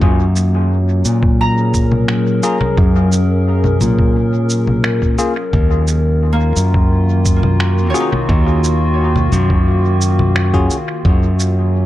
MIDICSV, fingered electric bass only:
0, 0, Header, 1, 2, 480
1, 0, Start_track
1, 0, Tempo, 689655
1, 11, Time_signature, 4, 2, 24, 8
1, 8254, End_track
2, 0, Start_track
2, 0, Title_t, "Fingered electric bass"
2, 0, Program_c, 0, 33
2, 10, Note_on_c, 0, 42, 101
2, 708, Note_off_c, 0, 42, 0
2, 731, Note_on_c, 0, 46, 83
2, 1669, Note_off_c, 0, 46, 0
2, 1931, Note_on_c, 0, 42, 102
2, 2629, Note_off_c, 0, 42, 0
2, 2656, Note_on_c, 0, 46, 86
2, 3591, Note_off_c, 0, 46, 0
2, 3850, Note_on_c, 0, 39, 100
2, 4548, Note_off_c, 0, 39, 0
2, 4569, Note_on_c, 0, 42, 84
2, 5508, Note_off_c, 0, 42, 0
2, 5770, Note_on_c, 0, 39, 103
2, 6468, Note_off_c, 0, 39, 0
2, 6488, Note_on_c, 0, 42, 85
2, 7427, Note_off_c, 0, 42, 0
2, 7690, Note_on_c, 0, 42, 98
2, 8254, Note_off_c, 0, 42, 0
2, 8254, End_track
0, 0, End_of_file